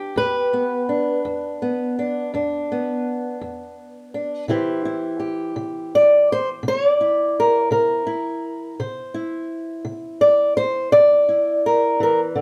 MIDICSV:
0, 0, Header, 1, 2, 480
1, 0, Start_track
1, 0, Tempo, 717703
1, 110, Time_signature, 12, 3, 24, 8
1, 8302, End_track
2, 0, Start_track
2, 0, Title_t, "Steel-string acoustic guitar"
2, 0, Program_c, 0, 25
2, 0, Note_on_c, 0, 62, 45
2, 0, Note_on_c, 0, 67, 85
2, 85, Note_off_c, 0, 62, 0
2, 107, Note_on_c, 0, 40, 71
2, 117, Note_on_c, 0, 71, 96
2, 355, Note_on_c, 0, 59, 44
2, 541, Note_off_c, 0, 40, 0
2, 583, Note_off_c, 0, 67, 0
2, 594, Note_on_c, 0, 62, 43
2, 836, Note_on_c, 0, 40, 73
2, 1074, Note_off_c, 0, 59, 0
2, 1084, Note_on_c, 0, 59, 45
2, 1266, Note_off_c, 0, 40, 0
2, 1313, Note_off_c, 0, 62, 0
2, 1329, Note_on_c, 0, 62, 46
2, 1557, Note_off_c, 0, 62, 0
2, 1562, Note_on_c, 0, 40, 69
2, 1567, Note_on_c, 0, 62, 49
2, 1798, Note_off_c, 0, 59, 0
2, 1817, Note_on_c, 0, 59, 46
2, 1989, Note_off_c, 0, 40, 0
2, 2283, Note_on_c, 0, 40, 71
2, 2709, Note_off_c, 0, 40, 0
2, 2758, Note_off_c, 0, 62, 0
2, 2771, Note_on_c, 0, 62, 46
2, 2972, Note_off_c, 0, 62, 0
2, 2976, Note_off_c, 0, 59, 0
2, 2995, Note_off_c, 0, 71, 0
2, 2997, Note_on_c, 0, 48, 70
2, 3003, Note_on_c, 0, 52, 47
2, 3007, Note_on_c, 0, 64, 47
2, 3014, Note_on_c, 0, 67, 49
2, 3015, Note_on_c, 0, 72, 50
2, 3243, Note_off_c, 0, 64, 0
2, 3246, Note_on_c, 0, 64, 45
2, 3426, Note_off_c, 0, 48, 0
2, 3472, Note_off_c, 0, 67, 0
2, 3475, Note_on_c, 0, 67, 44
2, 3718, Note_on_c, 0, 48, 71
2, 3977, Note_off_c, 0, 72, 0
2, 3980, Note_on_c, 0, 74, 90
2, 4147, Note_off_c, 0, 48, 0
2, 4206, Note_off_c, 0, 74, 0
2, 4229, Note_on_c, 0, 72, 89
2, 4336, Note_off_c, 0, 72, 0
2, 4434, Note_on_c, 0, 48, 73
2, 4468, Note_on_c, 0, 73, 100
2, 4601, Note_off_c, 0, 73, 0
2, 4601, Note_on_c, 0, 74, 100
2, 4679, Note_off_c, 0, 64, 0
2, 4686, Note_on_c, 0, 64, 45
2, 4865, Note_off_c, 0, 48, 0
2, 4913, Note_off_c, 0, 67, 0
2, 4947, Note_on_c, 0, 70, 82
2, 5076, Note_off_c, 0, 74, 0
2, 5076, Note_on_c, 0, 73, 100
2, 5153, Note_off_c, 0, 70, 0
2, 5154, Note_on_c, 0, 48, 71
2, 5161, Note_on_c, 0, 70, 70
2, 5163, Note_off_c, 0, 73, 0
2, 5163, Note_on_c, 0, 72, 100
2, 5386, Note_off_c, 0, 64, 0
2, 5394, Note_on_c, 0, 64, 46
2, 5410, Note_off_c, 0, 72, 0
2, 5585, Note_off_c, 0, 48, 0
2, 5844, Note_off_c, 0, 64, 0
2, 5876, Note_off_c, 0, 70, 0
2, 5883, Note_on_c, 0, 48, 70
2, 5885, Note_on_c, 0, 72, 51
2, 6116, Note_on_c, 0, 64, 47
2, 6310, Note_off_c, 0, 48, 0
2, 6585, Note_on_c, 0, 48, 69
2, 6826, Note_off_c, 0, 72, 0
2, 6829, Note_on_c, 0, 74, 93
2, 7021, Note_off_c, 0, 48, 0
2, 7065, Note_off_c, 0, 74, 0
2, 7068, Note_on_c, 0, 72, 96
2, 7302, Note_off_c, 0, 72, 0
2, 7305, Note_on_c, 0, 74, 101
2, 7309, Note_on_c, 0, 48, 73
2, 7540, Note_off_c, 0, 64, 0
2, 7548, Note_on_c, 0, 64, 44
2, 7743, Note_off_c, 0, 48, 0
2, 7799, Note_on_c, 0, 70, 82
2, 8018, Note_off_c, 0, 52, 0
2, 8026, Note_on_c, 0, 52, 60
2, 8036, Note_off_c, 0, 70, 0
2, 8045, Note_on_c, 0, 70, 71
2, 8152, Note_off_c, 0, 70, 0
2, 8262, Note_on_c, 0, 50, 66
2, 8269, Note_off_c, 0, 74, 0
2, 8270, Note_off_c, 0, 52, 0
2, 8302, Note_off_c, 0, 50, 0
2, 8302, Note_off_c, 0, 64, 0
2, 8302, End_track
0, 0, End_of_file